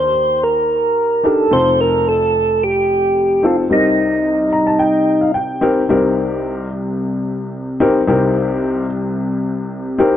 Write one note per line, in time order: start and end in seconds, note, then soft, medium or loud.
0.00 1.48 D#2 medium
0.00 1.48 D#3 medium
0.00 0.44 C5 loud
0.43 1.27 A#4 medium
1.24 1.43 D4 medium
1.24 1.43 D#4 medium
1.24 1.44 G4 medium
1.24 1.53 A4 medium
1.24 1.44 A#4 medium
1.51 3.67 F1 medium
1.51 3.66 F2 medium
1.51 2.27 C4 medium
1.51 2.28 D#4 medium
1.51 2.28 F4 medium
1.51 2.28 A4 medium
1.51 1.80 C5 loud
1.81 2.08 A#4 medium
2.09 2.64 A4 loud
2.63 3.47 G4 medium
3.43 3.62 C4 medium
3.43 3.62 D#4 medium
3.43 3.62 F4 medium
3.43 3.57 F4 medium
3.43 3.63 A4 medium
3.70 5.85 C2 medium
3.70 5.85 C3 medium
3.70 4.46 C4 medium
3.70 4.46 D#4 medium
3.70 5.32 D#4 medium
3.70 4.46 G4 medium
3.70 4.47 A#4 medium
4.53 4.65 A#5 medium
4.67 4.79 A5 medium
4.79 5.18 G5 medium
5.21 5.34 F5 medium
5.34 5.85 G5 medium
5.61 5.81 C4 medium
5.61 5.81 D#4 medium
5.61 5.81 G4 medium
5.61 5.81 A#4 loud
5.89 8.04 C2 medium
5.89 8.04 C3 medium
5.89 6.65 C4 medium
5.89 6.65 D#4 medium
5.89 6.66 G4 medium
5.89 6.66 A#4 medium
7.80 8.00 C4 medium
7.80 8.00 D#4 medium
7.80 8.00 G4 medium
7.80 8.00 A#4 loud
8.07 10.17 C2 medium
8.07 10.17 C3 medium
8.07 8.84 C4 medium
8.07 8.84 D#4 medium
8.07 8.84 G4 medium
8.07 8.85 A#4 medium
9.98 10.17 C4 medium
9.98 10.17 D#4 medium
9.98 10.17 G4 medium
9.98 10.17 A#4 medium